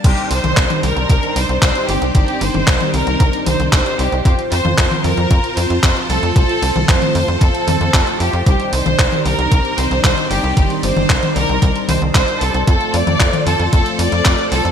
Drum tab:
CC |x---------------|----------------|----------------|----------------|
HH |xxoxxxoxxxoxxxox|xxoxxxoxxxoxxxox|xxoxxxoxxxoxxxox|xxoxxxoxxxoxxxox|
CP |----x-------x---|----x-------x---|----x-------x---|----x-------x---|
T1 |---o-o----------|---o-o----o-----|---o-o----------|---o-o----o-----|
BD |o---o---o---o---|o---o---o---o---|o---o---o---o---|o---o---o---o---|

CC |----------------|----------------|----------------|
HH |xxoxxxoxxxoxxxox|xxoxxxoxxxoxxxox|xxoxxxoxxxoxxxox|
CP |----x-------x---|----x-------x---|----x-------x---|
T1 |---o-o----------|---o-o----o-----|---o-o----------|
BD |o---o---o---o---|o---o---o---o---|o---o---o---o---|